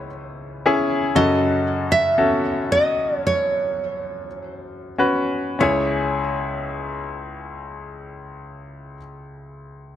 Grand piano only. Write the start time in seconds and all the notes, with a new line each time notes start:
Already playing: C#2 G#2 C#4 E4 B4
0.66 C#4 E4 G#4
1.15 F#2 C#3 C#4 F#4 A4
2.18 C#4 F#4 A4
4.98 C#4 F#4 B4
5.59 C#2 C#4 E4 G#4